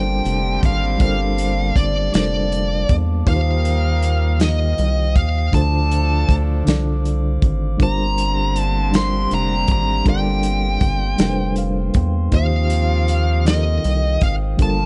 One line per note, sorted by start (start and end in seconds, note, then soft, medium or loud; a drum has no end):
0.00 0.21 G1 loud
0.00 2.85 D3 medium
0.00 0.98 G3 medium
0.00 2.85 G3 medium
0.00 3.24 A#3 medium
0.00 2.86 C4 medium
0.00 0.99 D4 medium
0.00 0.99 F4 medium
0.00 2.85 G4 medium
0.00 1.01 A4 medium
0.00 1.01 A#4 medium
0.00 1.02 C5 medium
0.00 7.76 F5 medium
0.00 0.60 G5 medium
0.00 3.23 A5 medium
0.00 0.98 C6 medium
0.25 0.59 F1 medium
0.25 closed hi-hat soft
0.63 0.97 G#1 medium
0.63 1.00 F5 medium
0.63 kick medium
0.63 closed hi-hat medium
0.98 1.72 G1 loud
0.98 1.91 G3 medium
0.98 1.91 D4 medium
0.98 1.92 F4 medium
0.98 1.92 A4 medium
0.98 1.93 A#4 medium
0.98 1.79 F5 medium
0.98 3.24 D6 medium
0.98 kick medium
0.98 closed hi-hat soft
1.02 1.93 C5 medium
1.38 closed hi-hat medium
1.76 2.10 G1 medium
1.76 2.11 D5 medium
1.76 kick medium
1.76 closed hi-hat soft
2.11 2.86 F1 loud
2.11 3.04 G3 medium
2.11 3.05 D4 medium
2.11 3.05 F4 medium
2.11 3.06 A4 medium
2.11 3.06 A#4 medium
2.11 2.95 D5 medium
2.11 snare loud
2.11 closed hi-hat medium
2.16 3.06 C5 medium
2.52 closed hi-hat soft
2.89 3.24 E2 medium
2.89 kick loud
2.89 closed hi-hat medium
3.25 4.74 D#2 loud
3.25 4.18 D#3 medium
3.25 5.12 G3 medium
3.25 5.12 A#3 medium
3.25 4.18 D#4 medium
3.25 4.19 F4 medium
3.25 5.12 F4 medium
3.25 4.19 G4 medium
3.25 5.12 A#4 medium
3.25 5.51 C5 medium
3.25 4.41 F5 medium
3.25 5.50 G5 medium
3.25 5.50 D#6 medium
3.25 kick medium
3.25 closed hi-hat medium
3.30 3.35 B4 medium
3.36 4.23 C5 medium
3.65 closed hi-hat medium
4.02 closed hi-hat soft
4.38 5.31 D#3 medium
4.38 5.32 D#4 medium
4.38 5.32 F4 medium
4.38 5.33 G4 medium
4.38 5.16 D#5 medium
4.38 snare loud
4.38 closed hi-hat medium
4.43 5.33 D#5 medium
4.78 5.18 C2 loud
4.78 closed hi-hat soft
5.16 5.50 D#2 loud
5.16 5.51 F5 medium
5.16 kick loud
5.16 closed hi-hat soft
5.51 6.25 D2 loud
5.51 6.44 D3 medium
5.51 7.38 F3 medium
5.51 7.38 A3 medium
5.51 6.45 D4 medium
5.51 7.38 D4 medium
5.51 6.45 F4 medium
5.51 7.38 A4 medium
5.51 6.46 A4 medium
5.51 7.78 C5 medium
5.51 6.35 A5 loud
5.51 7.78 D6 medium
5.51 kick medium
5.51 closed hi-hat medium
5.56 6.47 C5 medium
5.91 closed hi-hat medium
6.29 6.63 D2 medium
6.29 kick medium
6.29 closed hi-hat medium
6.64 7.38 C2 medium
6.64 7.57 D3 medium
6.64 7.58 D4 medium
6.64 7.59 F4 medium
6.64 closed hi-hat medium
6.68 7.59 A4 medium
6.68 7.60 D5 medium
6.68 snare loud
7.05 closed hi-hat soft
7.42 7.77 G#1 loud
7.42 kick medium
7.42 closed hi-hat soft
7.77 9.27 G1 loud
7.77 11.91 D3 medium
7.77 8.70 G3 medium
7.77 11.91 G3 medium
7.77 12.29 A#3 medium
7.77 11.91 C4 medium
7.77 8.71 D4 medium
7.77 8.71 F4 medium
7.77 11.91 G4 medium
7.77 8.72 G4 medium
7.77 14.86 F5 medium
7.77 12.29 C6 medium
7.77 kick medium
7.77 closed hi-hat medium
7.81 8.72 A#4 medium
7.81 8.73 C5 medium
7.81 8.59 A#5 loud
8.18 closed hi-hat medium
8.56 8.96 A5 loud
8.56 closed hi-hat soft
8.91 9.84 G3 medium
8.91 9.84 D4 medium
8.91 9.85 F4 medium
8.91 9.85 G4 medium
8.91 9.86 A#4 medium
8.91 snare loud
8.91 closed hi-hat medium
8.96 9.86 C5 medium
8.96 9.33 C6 loud
9.31 9.65 F1 medium
9.31 9.71 A#5 medium
9.31 closed hi-hat soft
9.67 10.03 G#1 medium
9.67 kick medium
9.67 closed hi-hat medium
9.72 10.05 A#5 medium
10.04 10.78 G1 loud
10.04 10.97 G3 medium
10.04 10.98 D4 medium
10.04 10.98 F4 medium
10.04 10.99 A4 medium
10.04 10.99 A#4 medium
10.04 kick medium
10.04 closed hi-hat medium
10.09 10.99 D5 medium
10.09 11.55 G5 medium
10.43 closed hi-hat medium
10.81 11.15 G1 loud
10.81 kick medium
10.81 closed hi-hat medium
11.18 11.91 F1 loud
11.18 12.11 G3 medium
11.18 12.11 D4 medium
11.18 12.12 F4 medium
11.18 12.12 A4 medium
11.18 snare loud
11.18 closed hi-hat medium
11.22 12.13 A#4 medium
11.22 11.28 B4 medium
11.30 12.16 C5 medium
11.56 11.93 F5 medium
11.56 closed hi-hat soft
11.94 12.29 E2 medium
11.94 12.31 G5 medium
11.94 kick loud
11.94 closed hi-hat medium
12.31 13.80 D#2 loud
12.31 14.18 C3 medium
12.31 13.24 D#3 medium
12.31 14.18 F3 medium
12.31 14.18 A#3 medium
12.31 13.24 D#4 medium
12.31 14.18 F4 medium
12.31 13.25 F4 medium
12.31 14.56 C5 medium
12.31 13.47 F5 medium
12.31 14.56 G5 medium
12.31 14.57 D#6 medium
12.31 kick medium
12.31 closed hi-hat medium
12.35 13.25 G4 medium
12.35 13.26 C5 medium
12.70 closed hi-hat medium
13.08 closed hi-hat medium
13.44 14.37 D#3 medium
13.44 14.37 D#4 medium
13.44 14.38 F4 medium
13.44 14.39 G4 medium
13.44 14.23 D#5 medium
13.44 snare loud
13.44 closed hi-hat medium
13.49 13.54 A4 medium
13.56 14.43 A#4 medium
13.84 14.18 C2 loud
13.84 closed hi-hat soft
14.21 14.56 G#1 medium
14.21 14.33 F5 medium
14.21 kick loud
14.21 closed hi-hat medium
14.57 14.86 G1 loud
14.57 14.86 D3 medium
14.57 14.86 F3 medium
14.57 14.86 G3 medium
14.57 14.86 A#3 medium
14.57 14.86 D4 medium
14.57 14.86 F4 medium
14.57 14.86 A4 medium
14.57 14.86 G5 medium
14.57 14.86 A5 medium
14.57 kick medium
14.57 closed hi-hat medium
14.62 14.86 A#4 medium
14.62 14.86 A5 loud